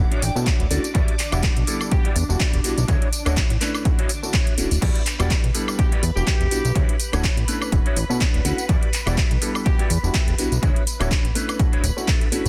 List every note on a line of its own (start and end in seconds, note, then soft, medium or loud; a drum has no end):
0.00 4.83 D4 medium
0.00 0.21 F#5 medium
0.00 4.83 D6 medium
0.11 0.20 A1 soft
0.11 0.22 D4 loud
0.11 0.22 E4 loud
0.11 0.22 F#4 loud
0.11 0.23 C#5 loud
0.11 closed hi-hat soft
0.22 0.30 A1 loud
0.22 0.45 G5 medium
0.22 open hi-hat loud
0.22 tambourine medium
0.35 0.51 B2 loud
0.35 0.43 A3 medium
0.35 0.43 C#4 medium
0.35 0.43 D4 medium
0.35 0.43 E4 medium
0.35 0.43 F#4 loud
0.35 muted clean electric guitar stroke soft
0.35 tambourine soft
0.46 0.65 D4 medium
0.46 0.65 E4 medium
0.46 0.65 F#4 medium
0.46 0.66 C#5 loud
0.46 0.69 F#5 medium
0.46 kick loud
0.46 clap loud
0.46 closed hi-hat medium
0.46 tambourine soft
0.60 0.67 D1 loud
0.60 closed hi-hat medium
0.70 0.79 D2 medium
0.70 0.80 A3 medium
0.70 0.80 C#4 medium
0.70 0.80 D4 medium
0.70 0.80 E4 medium
0.70 0.80 F#4 loud
0.70 0.93 D5 medium
0.70 open hi-hat loud
0.70 tambourine medium
0.83 muted clean electric guitar stroke soft
0.83 closed hi-hat soft
0.83 tambourine soft
0.94 1.03 E2 loud
0.94 1.13 E4 loud
0.94 1.13 F#4 loud
0.94 1.14 G4 loud
0.94 1.14 D5 loud
0.94 kick loud
0.94 closed hi-hat medium
0.94 tambourine soft
1.08 closed hi-hat medium
1.19 clap medium
1.19 open hi-hat loud
1.19 tambourine medium
1.32 1.48 E1 medium
1.32 1.40 G3 loud
1.32 1.40 B3 medium
1.32 1.40 D4 medium
1.32 1.56 E4 medium
1.32 1.40 E4 medium
1.32 1.56 F#4 medium
1.32 1.40 F#4 loud
1.32 1.57 G4 medium
1.32 1.57 D5 loud
1.32 closed hi-hat soft
1.32 tambourine soft
1.32 high woodblock medium
1.43 kick loud
1.43 clap loud
1.43 closed hi-hat medium
1.57 1.64 B1 medium
1.57 closed hi-hat medium
1.67 1.89 G3 medium
1.67 1.89 B3 medium
1.67 1.89 D4 medium
1.67 1.89 E4 medium
1.67 1.89 A4 loud
1.67 open hi-hat loud
1.67 tambourine medium
1.80 muted clean electric guitar stroke medium
1.80 tambourine soft
1.80 high woodblock medium
1.91 2.00 G3 medium
1.91 2.01 B3 medium
1.91 2.01 D4 medium
1.91 2.01 E4 medium
1.91 2.01 F#4 loud
1.91 2.10 G4 loud
1.91 kick loud
1.91 closed hi-hat medium
1.91 tambourine soft
2.04 2.15 E4 loud
2.04 2.16 F#4 loud
2.04 2.16 G4 loud
2.04 2.16 D5 loud
2.04 closed hi-hat medium
2.16 2.24 E2 medium
2.16 open hi-hat loud
2.16 tambourine medium
2.29 2.36 E1 loud
2.29 2.36 G3 medium
2.29 2.36 B3 medium
2.29 2.36 D4 medium
2.29 2.37 E4 medium
2.29 2.37 F#4 loud
2.29 muted clean electric guitar stroke soft
2.29 tambourine soft
2.40 2.58 E4 medium
2.40 2.59 F#4 medium
2.40 2.59 G4 medium
2.40 2.59 D5 loud
2.40 kick loud
2.40 clap loud
2.40 closed hi-hat medium
2.53 2.61 E1 loud
2.53 closed hi-hat medium
2.64 2.75 B1 soft
2.64 2.73 G3 medium
2.64 2.73 B3 medium
2.64 2.73 D4 medium
2.64 2.73 E4 medium
2.64 2.73 F#4 medium
2.64 open hi-hat loud
2.64 tambourine medium
2.77 2.85 B1 loud
2.77 muted clean electric guitar stroke soft
2.77 closed hi-hat soft
2.77 tambourine soft
2.88 2.96 D2 loud
2.88 3.07 D4 loud
2.88 3.07 E4 loud
2.88 3.07 F#4 loud
2.88 3.08 C#5 loud
2.88 kick loud
2.88 closed hi-hat medium
2.88 tambourine soft
3.02 closed hi-hat medium
3.13 open hi-hat loud
3.13 tambourine medium
3.25 3.41 D1 medium
3.25 3.33 A3 loud
3.25 3.33 C#4 medium
3.25 3.50 D4 medium
3.25 3.33 D4 medium
3.25 3.50 E4 medium
3.25 3.33 E4 medium
3.25 3.50 F#4 medium
3.25 3.33 F#4 loud
3.25 3.51 C#5 medium
3.25 closed hi-hat soft
3.25 tambourine soft
3.25 high woodblock medium
3.37 kick loud
3.37 clap loud
3.37 closed hi-hat medium
3.37 tambourine soft
3.50 3.57 A1 medium
3.50 closed hi-hat medium
3.61 3.82 A3 medium
3.61 3.83 C#4 medium
3.61 3.83 D4 medium
3.61 3.83 E4 medium
3.61 3.83 B4 medium
3.61 clap medium
3.61 open hi-hat loud
3.61 tambourine medium
3.74 muted clean electric guitar stroke medium
3.74 tambourine soft
3.74 high woodblock medium
3.85 3.94 A3 medium
3.85 3.94 C#4 medium
3.85 3.94 D4 medium
3.85 3.94 E4 medium
3.85 3.94 F#4 loud
3.85 kick loud
3.85 closed hi-hat medium
3.85 tambourine soft
3.98 4.09 D4 loud
3.98 4.09 E4 loud
3.98 4.09 F#4 loud
3.98 4.10 C#5 loud
3.98 closed hi-hat medium
4.09 open hi-hat loud
4.09 tambourine medium
4.22 4.30 A3 medium
4.22 4.30 C#4 medium
4.22 4.30 D4 medium
4.22 4.30 E4 medium
4.22 4.30 F#4 medium
4.22 muted clean electric guitar stroke soft
4.22 tambourine soft
4.33 4.52 D4 medium
4.33 4.52 E4 medium
4.33 4.53 F#4 medium
4.33 4.53 C#5 medium
4.33 kick loud
4.33 clap loud
4.33 closed hi-hat medium
4.47 closed hi-hat medium
4.57 4.69 D1 soft
4.57 4.67 A3 medium
4.57 4.67 C#4 medium
4.57 4.67 D4 medium
4.57 4.67 E4 medium
4.57 4.67 F#4 medium
4.57 open hi-hat loud
4.57 tambourine medium
4.71 4.78 D1 medium
4.71 muted clean electric guitar stroke soft
4.71 open hi-hat medium
4.71 tambourine soft
4.81 4.90 E2 loud
4.81 5.00 E4 loud
4.81 5.01 F#4 loud
4.81 5.01 G4 loud
4.81 12.49 B4 medium
4.81 5.01 D5 loud
4.81 12.49 B5 medium
4.81 kick loud
4.81 closed hi-hat medium
4.81 crash medium
4.95 closed hi-hat medium
5.06 clap medium
5.06 open hi-hat loud
5.06 tambourine medium
5.19 5.35 E1 medium
5.19 5.27 G3 medium
5.19 5.27 B3 medium
5.19 5.27 D4 medium
5.19 5.44 E4 medium
5.19 5.27 E4 medium
5.19 5.44 F#4 medium
5.19 5.27 F#4 loud
5.19 5.44 G4 medium
5.19 5.44 D5 loud
5.19 closed hi-hat soft
5.19 tambourine soft
5.19 high woodblock medium
5.30 kick loud
5.30 clap loud
5.30 closed hi-hat medium
5.30 tambourine soft
5.44 5.51 B1 medium
5.44 closed hi-hat medium
5.54 5.76 G3 medium
5.54 5.76 B3 medium
5.54 5.76 D4 medium
5.54 5.76 E4 medium
5.54 5.76 A4 medium
5.54 open hi-hat loud
5.54 tambourine medium
5.67 muted clean electric guitar stroke medium
5.67 tambourine soft
5.67 high woodblock medium
5.78 5.88 G3 medium
5.78 5.88 B3 medium
5.78 5.88 D4 medium
5.78 5.88 E4 medium
5.78 5.88 F#4 loud
5.78 5.97 G4 medium
5.78 kick loud
5.78 closed hi-hat medium
5.91 6.03 E4 loud
5.91 6.03 F#4 loud
5.91 6.03 G4 loud
5.91 6.03 D5 loud
5.91 closed hi-hat medium
6.03 6.11 E2 medium
6.03 open hi-hat loud
6.03 tambourine medium
6.16 6.23 E1 loud
6.16 6.23 G3 medium
6.16 6.24 B3 medium
6.16 6.24 D4 medium
6.16 6.24 E4 medium
6.16 6.24 F#4 loud
6.16 6.81 G4 loud
6.16 muted clean electric guitar stroke soft
6.16 tambourine soft
6.27 6.46 E4 medium
6.27 6.46 F#4 medium
6.27 6.46 G4 medium
6.27 6.46 B4 loud
6.27 kick loud
6.27 clap loud
6.27 closed hi-hat medium
6.27 tambourine soft
6.40 6.48 E1 loud
6.40 closed hi-hat medium
6.51 6.62 B1 soft
6.51 6.60 G3 medium
6.51 6.60 B3 medium
6.51 6.60 D4 medium
6.51 6.60 E4 medium
6.51 6.61 F#4 loud
6.51 open hi-hat loud
6.51 tambourine medium
6.64 6.72 B1 loud
6.64 muted clean electric guitar stroke soft
6.64 closed hi-hat soft
6.64 tambourine soft
6.75 6.84 D2 loud
6.75 6.94 D4 loud
6.75 6.94 E4 loud
6.75 6.94 F#4 loud
6.75 6.95 C#5 loud
6.75 kick loud
6.75 closed hi-hat medium
6.75 tambourine soft
6.89 closed hi-hat medium
7.00 open hi-hat loud
7.00 tambourine medium
7.12 7.28 D1 medium
7.12 7.20 A3 medium
7.12 7.20 C#4 medium
7.12 7.37 D4 medium
7.12 7.20 D4 medium
7.12 7.37 E4 medium
7.12 7.20 E4 medium
7.12 7.37 F#4 medium
7.12 7.21 F#4 loud
7.12 7.38 C#5 loud
7.12 closed hi-hat soft
7.12 tambourine soft
7.12 high woodblock medium
7.24 kick loud
7.24 clap loud
7.24 closed hi-hat medium
7.37 7.44 A1 medium
7.37 closed hi-hat medium
7.48 7.69 A3 medium
7.48 7.70 C#4 medium
7.48 7.70 D4 medium
7.48 7.70 E4 medium
7.48 7.70 B4 medium
7.48 open hi-hat loud
7.48 tambourine medium
7.61 muted clean electric guitar stroke medium
7.61 tambourine soft
7.61 high woodblock medium
7.72 7.80 D1 loud
7.72 7.81 A3 medium
7.72 7.81 C#4 medium
7.72 7.81 D4 medium
7.72 7.81 E4 medium
7.72 7.81 F#4 loud
7.72 muted clean electric guitar stroke soft
7.72 kick loud
7.72 closed hi-hat medium
7.72 tambourine soft
7.85 7.94 A1 soft
7.85 7.96 D4 loud
7.85 7.96 E4 loud
7.85 7.97 F#4 loud
7.85 7.97 C#5 loud
7.85 closed hi-hat medium
7.96 8.04 A1 loud
7.96 open hi-hat loud
7.96 tambourine medium
8.09 8.25 B2 loud
8.09 8.17 A3 medium
8.09 8.17 C#4 medium
8.09 8.17 D4 medium
8.09 8.17 E4 medium
8.09 8.17 F#4 loud
8.09 muted clean electric guitar stroke soft
8.09 tambourine soft
8.20 8.39 D4 medium
8.20 8.39 E4 medium
8.20 8.40 F#4 medium
8.20 8.40 C#5 loud
8.20 8.43 D5 medium
8.20 kick loud
8.20 clap loud
8.20 closed hi-hat medium
8.34 8.41 D1 medium
8.34 closed hi-hat medium
8.44 8.53 D2 medium
8.44 8.54 A3 medium
8.44 8.54 C#4 medium
8.44 8.54 D4 medium
8.44 8.54 E4 medium
8.44 8.54 F#4 loud
8.44 8.67 F#5 medium
8.44 open hi-hat loud
8.44 tambourine medium
8.58 muted clean electric guitar stroke soft
8.58 closed hi-hat soft
8.58 tambourine soft
8.69 8.77 E2 loud
8.69 8.88 E4 loud
8.69 8.88 F#4 loud
8.69 8.88 G4 loud
8.69 8.88 D5 loud
8.69 kick loud
8.69 closed hi-hat medium
8.69 tambourine soft
8.83 closed hi-hat medium
8.93 clap medium
8.93 open hi-hat loud
8.93 tambourine medium
9.06 9.22 E1 medium
9.06 9.14 G3 loud
9.06 9.14 B3 medium
9.06 9.14 D4 medium
9.06 9.31 E4 medium
9.06 9.14 E4 medium
9.06 9.31 F#4 medium
9.06 9.14 F#4 loud
9.06 9.31 G4 medium
9.06 9.31 D5 loud
9.06 closed hi-hat soft
9.06 tambourine soft
9.06 high woodblock medium
9.17 kick loud
9.17 clap loud
9.17 closed hi-hat medium
9.31 9.38 B1 medium
9.31 closed hi-hat medium
9.41 9.63 G3 medium
9.41 9.63 B3 medium
9.41 9.63 D4 medium
9.41 9.63 E4 medium
9.41 9.64 A4 medium
9.41 open hi-hat loud
9.41 tambourine medium
9.54 muted clean electric guitar stroke medium
9.54 tambourine soft
9.54 high woodblock medium
9.65 9.75 G3 medium
9.65 9.75 B3 medium
9.65 9.75 D4 medium
9.65 9.75 E4 medium
9.65 9.75 F#4 loud
9.65 9.84 G4 loud
9.65 muted clean electric guitar stroke soft
9.65 kick loud
9.65 closed hi-hat medium
9.65 tambourine soft
9.79 9.90 E4 loud
9.79 9.90 F#4 loud
9.79 9.90 G4 loud
9.79 9.90 D5 loud
9.79 closed hi-hat soft
9.90 9.98 E2 loud
9.90 open hi-hat loud
9.90 tambourine medium
10.03 10.11 E1 medium
10.03 10.11 G3 medium
10.03 10.11 B3 medium
10.03 10.11 D4 medium
10.03 10.11 E4 medium
10.03 10.11 F#4 medium
10.03 muted clean electric guitar stroke soft
10.03 tambourine soft
10.14 10.33 E4 medium
10.14 10.33 F#4 medium
10.14 10.33 G4 medium
10.14 10.33 A4 medium
10.14 kick loud
10.14 clap loud
10.14 closed hi-hat medium
10.28 10.35 E1 loud
10.28 closed hi-hat medium
10.38 10.49 B1 soft
10.38 10.47 G3 medium
10.38 10.47 B3 medium
10.38 10.48 D4 medium
10.38 10.48 E4 medium
10.38 10.48 F#4 loud
10.38 open hi-hat loud
10.38 tambourine medium
10.51 10.59 B1 loud
10.51 muted clean electric guitar stroke soft
10.51 closed hi-hat soft
10.51 tambourine soft
10.62 10.71 D2 loud
10.62 10.81 D4 loud
10.62 10.81 E4 loud
10.62 10.82 F#4 loud
10.62 10.82 C#5 loud
10.62 kick loud
10.62 closed hi-hat medium
10.76 closed hi-hat medium
10.87 open hi-hat loud
10.87 tambourine medium
11.00 11.15 D1 medium
11.00 11.07 A3 loud
11.00 11.07 C#4 medium
11.00 11.24 D4 medium
11.00 11.08 D4 medium
11.00 11.24 E4 medium
11.00 11.08 E4 medium
11.00 11.25 F#4 medium
11.00 11.08 F#4 loud
11.00 11.25 C#5 loud
11.00 closed hi-hat soft
11.00 tambourine soft
11.00 high woodblock medium
11.11 kick loud
11.11 clap loud
11.11 closed hi-hat medium
11.24 11.32 A1 medium
11.24 closed hi-hat soft
11.35 11.57 A3 medium
11.35 11.57 C#4 medium
11.35 11.57 D4 medium
11.35 11.57 E4 medium
11.35 11.57 B4 medium
11.35 open hi-hat loud
11.35 tambourine medium
11.48 muted clean electric guitar stroke medium
11.48 closed hi-hat soft
11.48 tambourine soft
11.48 high woodblock medium
11.59 11.68 A3 medium
11.59 11.68 C#4 medium
11.59 11.68 D4 medium
11.59 11.69 E4 medium
11.59 11.69 F#4 loud
11.59 muted clean electric guitar stroke soft
11.59 kick loud
11.59 closed hi-hat medium
11.59 tambourine soft
11.72 11.81 D1 soft
11.72 11.83 D4 loud
11.72 11.83 E4 loud
11.72 11.84 F#4 loud
11.72 11.84 C#5 loud
11.72 closed hi-hat soft
11.83 11.92 D1 medium
11.83 open hi-hat loud
11.83 tambourine medium
11.96 12.04 A3 medium
11.96 12.04 C#4 medium
11.96 12.04 D4 medium
11.96 12.04 E4 medium
11.96 12.04 F#4 loud
11.96 muted clean electric guitar stroke soft
11.96 tambourine soft
12.07 12.26 D4 medium
12.07 12.27 E4 medium
12.07 12.27 F#4 medium
12.07 12.27 A4 loud
12.07 kick loud
12.07 clap loud
12.07 closed hi-hat medium
12.07 tambourine soft
12.21 closed hi-hat medium
12.32 12.43 A1 soft
12.32 12.41 A3 medium
12.32 12.41 C#4 medium
12.32 12.41 D4 medium
12.32 12.41 E4 medium
12.32 12.41 F#4 loud
12.32 open hi-hat loud
12.32 tambourine medium
12.45 12.49 A1 loud
12.45 muted clean electric guitar stroke soft
12.45 closed hi-hat soft